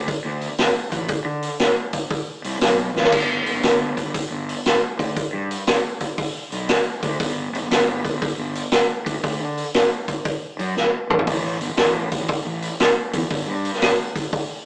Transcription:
0.08 kick loud
0.08 open hi-hat medium
0.25 0.47 D2 medium
0.41 open hi-hat soft
0.58 snare loud
0.58 open hi-hat medium
0.92 1.07 A1 loud
0.92 kick medium
0.92 open hi-hat medium
1.08 kick loud
1.08 open hi-hat medium
1.25 1.48 D3 medium
1.43 open hi-hat medium
1.59 snare loud
1.59 open hi-hat medium
1.93 kick medium
1.93 open hi-hat medium
2.10 kick loud
2.10 open hi-hat medium
2.44 2.60 C2 medium
2.44 open hi-hat medium
2.61 2.92 B1 medium
2.61 snare loud
2.61 open hi-hat medium
2.94 3.10 A1 medium
2.94 snare medium
3.04 snare medium
3.12 3.42 G1 medium
3.12 kick loud
3.12 open hi-hat medium
3.12 crash medium
3.46 3.53 F1 medium
3.46 open hi-hat soft
3.53 3.61 G1 medium
3.63 3.92 G1 medium
3.63 snare loud
3.63 open hi-hat medium
3.97 kick medium
3.97 open hi-hat medium
4.04 4.12 G1 medium
4.14 kick loud
4.14 open hi-hat medium
4.30 4.53 G1 medium
4.49 open hi-hat medium
4.66 snare loud
4.66 open hi-hat medium
4.99 5.14 D2 loud
4.99 kick medium
4.99 open hi-hat medium
5.17 kick loud
5.17 open hi-hat medium
5.33 5.55 G2 medium
5.51 open hi-hat medium
5.67 snare loud
5.67 open hi-hat medium
6.00 kick medium
6.00 open hi-hat medium
6.18 kick loud
6.18 open hi-hat medium
6.52 6.67 B1 medium
6.52 open hi-hat medium
6.69 snare loud
6.69 open hi-hat medium
7.03 7.18 D2 medium
7.03 kick medium
7.03 open hi-hat medium
7.20 7.49 G1 loud
7.20 kick loud
7.20 open hi-hat medium
7.52 7.60 F1 loud
7.52 open hi-hat medium
7.62 7.69 G1 medium
7.70 8.00 G1 medium
7.70 snare loud
7.70 open hi-hat medium
8.05 kick medium
8.05 open hi-hat medium
8.12 8.20 G1 medium
8.22 kick loud
8.22 open hi-hat medium
8.38 8.60 G1 medium
8.55 open hi-hat medium
8.72 snare loud
8.72 open hi-hat medium
9.06 9.14 D2 loud
9.06 kick medium
9.06 open hi-hat medium
9.23 9.38 D2 loud
9.23 kick loud
9.23 open hi-hat medium
9.40 9.62 D3 medium
9.57 open hi-hat medium
9.74 snare loud
9.74 open hi-hat medium
10.08 kick medium
10.08 open hi-hat medium
10.25 kick loud
10.25 open hi-hat medium
10.59 10.74 F#2 medium
10.59 open hi-hat medium
10.77 snare medium
11.10 11.25 A1 medium
11.10 mid tom medium
11.19 floor tom medium
11.27 11.56 A1 loud
11.27 kick loud
11.27 open hi-hat medium
11.60 11.67 G1 medium
11.60 open hi-hat medium
11.68 11.75 A1 medium
11.76 12.06 A1 medium
11.76 snare loud
11.76 open hi-hat medium
12.12 kick medium
12.12 open hi-hat medium
12.20 12.27 A1 medium
12.28 kick loud
12.28 open hi-hat medium
12.45 12.68 A1 medium
12.62 open hi-hat medium
12.80 snare loud
12.80 open hi-hat medium
13.13 13.21 E2 loud
13.13 kick medium
13.13 open hi-hat medium
13.30 13.45 G1 loud
13.30 kick loud
13.30 open hi-hat medium
13.47 13.69 G2 medium
13.65 open hi-hat medium
13.74 snare soft
13.82 snare loud
13.82 open hi-hat medium
14.16 kick loud
14.16 open hi-hat medium
14.33 kick loud
14.33 open hi-hat medium

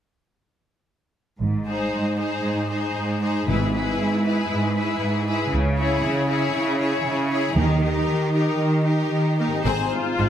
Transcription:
1.41 1.84 G#1 soft
1.41 1.87 G#2 soft
1.66 2.17 D#4 soft
1.66 2.17 G#4 soft
1.66 2.17 C5 soft
1.94 2.39 G#2 soft
2.18 2.69 D#4 soft
2.18 2.68 G#4 soft
2.18 2.69 C5 soft
2.45 2.90 G#2 soft
2.70 3.20 D#4 soft
2.70 3.20 G#4 soft
2.70 3.20 C5 soft
2.97 3.42 G#2 soft
3.21 3.47 D#4 soft
3.21 3.47 G#4 soft
3.21 3.47 C5 soft
3.48 3.91 G#1 soft
3.48 3.93 G#2 medium
3.48 4.21 G#2 soft
3.48 3.73 E4 soft
3.48 3.73 G#4 soft
3.48 3.71 B4 soft
3.72 4.24 E4 soft
3.72 4.24 G#4 soft
3.72 4.23 B4 soft
3.99 4.44 G#2 soft
4.24 4.75 E4 soft
4.24 4.75 G#4 soft
4.24 4.74 B4 soft
4.51 4.95 G#2 medium
4.76 5.26 E4 soft
4.76 5.26 G#4 soft
4.76 5.25 B4 soft
5.01 5.46 G#2 soft
5.26 5.52 E4 soft
5.26 5.52 G#4 soft
5.26 5.51 B4 soft
5.52 5.95 C#2 soft
5.52 5.97 C#3 medium
5.76 6.28 E4 soft
5.76 6.27 G#4 soft
5.76 6.27 C#5 soft
6.04 6.48 C#3 medium
6.28 6.79 E4 soft
6.28 6.79 G#4 soft
6.28 6.78 C#5 soft
6.55 6.99 C#3 medium
6.79 7.30 E4 soft
6.79 7.30 G#4 soft
6.79 7.28 C#5 soft
7.06 7.50 C#3 medium
7.29 7.56 E4 soft
7.29 7.56 G#4 soft
7.29 7.55 C#5 soft
7.55 7.99 D#2 soft
7.55 8.01 D#3 medium
7.55 8.29 D#3 soft
7.55 7.81 D#4 soft
7.55 7.81 G4 soft
7.55 7.81 A#4 soft
7.82 8.32 D#4 soft
7.82 8.32 G4 soft
7.82 8.31 A#4 soft
8.07 8.53 D#3 soft
8.33 8.84 D#4 soft
8.33 8.83 G4 soft
8.33 8.84 A#4 soft
8.59 9.05 D#3 soft
8.84 9.37 D#4 soft
8.84 9.37 G4 soft
8.84 9.37 A#4 soft
9.12 9.59 D#3 soft
9.38 9.46 A#3 soft
9.38 9.65 D#4 soft
9.38 9.65 G4 soft
9.38 9.65 A#4 soft
9.47 10.29 G#2 soft
9.52 10.29 C4 soft
9.56 10.29 D#4 soft
9.60 10.29 G#4 soft
9.65 9.73 G#1 soft
9.65 10.29 G#2 soft
9.65 9.73 G#2 medium
9.65 9.73 C4 medium
9.65 9.90 G#4 soft
9.65 9.90 C5 medium
9.65 10.29 C5 soft
9.92 10.29 F4 medium
10.18 10.27 G#1 soft
10.18 10.26 G#2 soft
10.18 10.26 D#4 soft
10.18 10.26 G#4 soft

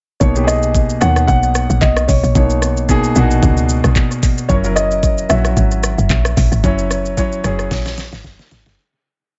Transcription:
0.20 0.97 B1 loud
0.20 0.33 B2 medium
0.20 0.33 A#3 medium
0.20 0.33 D#4 medium
0.20 0.48 C#5 loud
0.20 0.34 C#5 medium
0.20 kick loud
0.20 shaker medium
0.35 0.89 B2 medium
0.35 0.90 A#3 medium
0.35 0.90 D#4 medium
0.35 0.42 G4 medium
0.35 shaker medium
0.44 0.93 G#4 medium
0.44 1.03 D#5 loud
0.48 cross-stick medium
0.48 shaker loud
0.63 shaker soft
0.75 kick medium
0.75 shaker medium
0.90 shaker soft
1.01 1.27 D#2 loud
1.01 1.87 B2 medium
1.01 1.88 A#3 medium
1.01 1.88 D#4 medium
1.01 1.88 C#5 medium
1.01 1.26 F#5 loud
1.01 cross-stick loud
1.01 shaker medium
1.16 cross-stick medium
1.16 shaker medium
1.27 1.67 B1 loud
1.27 1.83 F#5 loud
1.27 kick loud
1.27 shaker medium
1.43 shaker medium
1.55 cross-stick loud
1.55 shaker medium
1.70 1.81 A#1 loud
1.70 shaker medium
1.81 2.07 B1 loud
1.81 2.09 D#5 medium
1.81 kick loud
1.81 clap medium
1.81 shaker medium
1.97 cross-stick loud
1.97 shaker medium
2.08 2.22 B1 loud
2.08 3.65 C#5 medium
2.08 kick loud
2.08 open hi-hat medium
2.08 shaker medium
2.23 2.35 A#1 medium
2.23 shaker medium
2.35 3.12 B1 loud
2.35 2.79 B2 medium
2.35 2.79 A#3 medium
2.35 2.80 D#4 medium
2.35 2.80 C#5 medium
2.35 kick loud
2.35 shaker medium
2.50 shaker medium
2.62 cross-stick medium
2.62 shaker loud
2.77 shaker soft
2.89 3.11 B2 loud
2.89 3.11 A#3 medium
2.89 3.11 D#4 medium
2.89 3.12 G#4 loud
2.89 kick medium
2.89 shaker medium
3.04 shaker medium
3.16 3.41 A#1 loud
3.16 4.02 B2 loud
3.16 4.02 A#3 medium
3.16 3.23 D4 medium
3.16 4.03 F#4 loud
3.16 shaker medium
3.23 4.06 D#4 medium
3.31 shaker medium
3.43 3.82 C#2 loud
3.43 kick loud
3.43 shaker medium
3.57 shaker medium
3.69 shaker medium
3.84 3.95 B1 medium
3.84 cross-stick medium
3.84 shaker medium
3.96 kick medium
3.96 clap medium
3.96 shaker medium
4.11 shaker medium
4.23 kick loud
4.23 open hi-hat medium
4.23 shaker medium
4.38 shaker medium
4.49 5.26 F#1 loud
4.49 4.61 F#3 medium
4.49 4.62 C#4 medium
4.49 4.62 E4 medium
4.49 4.62 A#4 medium
4.49 4.55 C#5 loud
4.49 kick loud
4.49 shaker medium
4.64 5.18 F#3 medium
4.64 5.18 C#4 medium
4.64 5.18 E4 medium
4.64 5.19 A#4 medium
4.64 shaker medium
4.76 5.31 D#5 loud
4.76 cross-stick medium
4.76 shaker loud
4.91 shaker soft
5.03 kick medium
5.03 shaker medium
5.18 shaker medium
5.29 5.55 A#1 medium
5.29 6.16 F#3 medium
5.29 6.16 C#4 medium
5.29 6.17 E4 medium
5.29 6.17 F#4 medium
5.29 8.20 E5 loud
5.29 cross-stick loud
5.29 shaker medium
5.45 cross-stick medium
5.45 shaker medium
5.57 5.96 G#1 loud
5.57 kick loud
5.57 shaker medium
5.71 shaker medium
5.83 cross-stick loud
5.83 shaker medium
5.98 6.10 F#1 medium
5.98 shaker medium
6.10 6.35 A#1 medium
6.10 kick medium
6.10 clap medium
6.10 shaker medium
6.25 cross-stick loud
6.25 shaker medium
6.37 6.51 A#1 loud
6.37 kick loud
6.37 open hi-hat medium
6.37 shaker medium
6.52 6.63 G#1 medium
6.52 shaker soft
6.63 7.40 F#1 loud
6.63 7.08 F#3 medium
6.63 7.08 C#4 medium
6.63 7.08 E4 medium
6.63 7.09 C#5 loud
6.63 kick loud
6.63 shaker medium
6.78 shaker medium
6.91 cross-stick medium
6.91 shaker medium
7.05 shaker soft
7.17 7.39 F#3 medium
7.17 7.40 C#4 medium
7.17 7.40 E4 medium
7.17 7.40 C#5 loud
7.17 kick medium
7.17 shaker medium
7.32 shaker medium
7.44 7.70 F#1 loud
7.44 8.30 F#3 medium
7.44 8.31 C#4 medium
7.44 8.31 E4 medium
7.44 8.31 G#4 loud
7.44 cross-stick loud
7.44 shaker medium
7.59 cross-stick medium
7.59 shaker medium
7.71 8.10 A#1 loud
7.71 kick loud
7.71 snare medium
7.71 shaker medium
7.86 snare medium
7.86 shaker medium
7.98 snare medium
7.98 shaker medium
8.13 8.24 G#1 medium
8.13 snare medium
8.13 shaker medium
8.24 8.38 F#1 loud
8.24 kick medium
8.24 snare medium
8.24 shaker medium
8.39 snare medium
8.39 shaker medium
8.51 8.65 G#1 loud
8.51 snare loud
8.51 open hi-hat medium
8.51 shaker medium
8.66 8.78 F#1 medium
8.66 snare loud
8.66 shaker soft

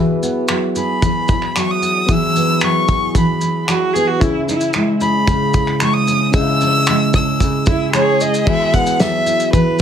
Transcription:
0.00 1.02 E3 medium
0.00 0.49 F#3 medium
0.00 0.22 B3 soft
0.00 2.04 B3 medium
0.00 2.04 F#4 medium
0.00 2.05 G#4 medium
0.00 0.75 B4 medium
0.00 2.05 E5 medium
0.22 1.81 B3 medium
0.22 shaker soft
0.48 1.55 F#3 medium
0.48 finger snap loud
0.48 shaker medium
0.75 2.89 G#4 medium
0.75 1.59 B5 medium
0.75 shaker soft
1.02 2.09 E3 medium
1.02 kick medium
1.02 shaker medium
1.28 3.42 E4 medium
1.28 kick loud
1.28 shaker medium
1.42 finger snap soft
1.56 2.61 F#3 medium
1.56 1.73 C#6 medium
1.56 finger snap loud
1.56 shaker medium
1.71 2.13 D#6 loud
1.82 2.35 B3 medium
1.82 shaker soft
2.07 3.15 E3 medium
2.07 4.16 B3 medium
2.07 4.17 F#4 medium
2.07 4.18 G#4 medium
2.07 4.18 E5 medium
2.07 kick medium
2.07 shaker medium
2.12 2.66 E6 loud
2.36 3.94 B3 medium
2.36 shaker soft
2.61 3.67 F#3 medium
2.61 3.16 C#6 loud
2.61 finger snap loud
2.61 shaker medium
2.88 5.01 G#4 medium
2.88 kick medium
2.88 shaker soft
3.15 4.22 E3 medium
3.15 3.66 B5 medium
3.15 kick medium
3.15 shaker medium
3.41 5.54 E4 medium
3.41 shaker medium
3.66 4.27 F#3 medium
3.66 3.95 F#4 medium
3.66 finger snap loud
3.66 shaker medium
3.93 4.27 B3 medium
3.93 4.09 G#4 loud
3.93 shaker soft
4.07 4.22 F#4 medium
4.20 5.26 C#3 medium
4.20 6.29 C#4 medium
4.20 4.47 E4 loud
4.20 6.30 E4 medium
4.20 6.31 G#4 medium
4.20 kick medium
4.20 shaker medium
4.24 6.31 E5 medium
4.48 6.07 C#4 medium
4.48 4.85 E4 medium
4.48 shaker soft
4.61 shaker soft
4.73 5.81 G#3 medium
4.73 finger snap loud
4.73 shaker medium
5.01 7.15 G#4 medium
5.01 5.77 B5 medium
5.01 shaker soft
5.28 6.34 C#3 medium
5.28 kick medium
5.28 shaker medium
5.54 7.68 E4 medium
5.54 kick loud
5.54 shaker medium
5.67 finger snap soft
5.80 6.88 G#3 medium
5.80 5.95 C#6 medium
5.80 finger snap loud
5.80 shaker medium
5.93 6.34 D#6 loud
6.07 6.61 C#4 medium
6.07 shaker medium
6.31 7.40 C#3 medium
6.31 8.42 C#4 medium
6.31 8.43 E4 medium
6.31 8.43 G#4 medium
6.31 7.10 E6 loud
6.31 kick loud
6.31 shaker medium
6.36 6.41 D#5 medium
6.42 8.47 E5 medium
6.61 8.20 C#4 medium
6.61 shaker soft
6.87 7.93 G#3 medium
6.87 finger snap loud
6.87 shaker medium
7.13 7.90 E6 loud
7.13 kick medium
7.13 shaker soft
7.40 8.47 C#3 medium
7.40 kick medium
7.40 shaker medium
7.66 7.92 E4 medium
7.66 9.03 E4 medium
7.66 kick loud
7.66 shaker soft
7.93 9.00 G#3 medium
7.93 8.43 G#4 loud
7.93 8.23 C#5 medium
7.93 finger snap loud
7.93 shaker medium
8.21 8.53 C#4 medium
8.21 8.49 D#5 medium
8.21 shaker medium
8.34 shaker medium
8.45 9.53 E3 medium
8.45 9.82 B3 medium
8.45 9.82 E4 medium
8.45 9.82 F#4 medium
8.45 9.82 G#4 medium
8.45 9.79 G#4 medium
8.45 8.76 E5 loud
8.45 9.82 E5 medium
8.45 kick loud
8.45 crash medium
8.74 9.82 B3 medium
8.74 9.01 F#5 loud
8.74 kick medium
8.74 shaker soft
8.86 shaker soft
9.00 9.82 F#3 medium
9.00 9.52 E5 loud
9.00 snare loud
9.00 shaker medium
9.26 9.82 E4 medium
9.26 shaker medium
9.40 shaker medium
9.53 9.82 E3 medium
9.53 9.82 B4 medium
9.53 kick medium
9.53 shaker medium

